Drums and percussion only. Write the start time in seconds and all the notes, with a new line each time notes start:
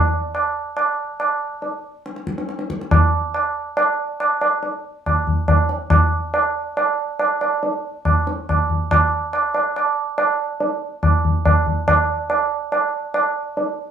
0.35 tabla na
0.77 tabla na
1.20 tabla na
1.62 tabla tin
2.06 tabla te
2.16 tabla te
2.27 tabla ke
2.38 tabla te
2.49 tabla te
2.59 tabla te
2.70 tabla ke
2.81 tabla te
2.91 tabla na, tabla ge
3.34 tabla na
3.77 tabla na
4.20 tabla na
4.41 tabla na
4.63 tabla tin
5.06 tabla na, tabla ge
5.27 tabla ge
5.48 tabla na, tabla ge
5.69 tabla te
5.90 tabla na, tabla ge
6.34 tabla na
6.77 tabla na
7.19 tabla na
7.41 tabla na
7.63 tabla tin
8.05 tabla na, tabla ge
8.27 tabla te
8.49 tabla na, tabla ge
8.70 tabla ge
8.91 tabla na, tabla ge
9.33 tabla na
9.54 tabla na
9.76 tabla na
10.18 tabla na
10.60 tabla tin
11.03 tabla na, tabla ge
11.25 tabla ge
11.45 tabla na, tabla ge
11.66 tabla ge
11.88 tabla na, tabla ge
12.30 tabla na
12.72 tabla na
13.14 tabla na
13.57 tabla tin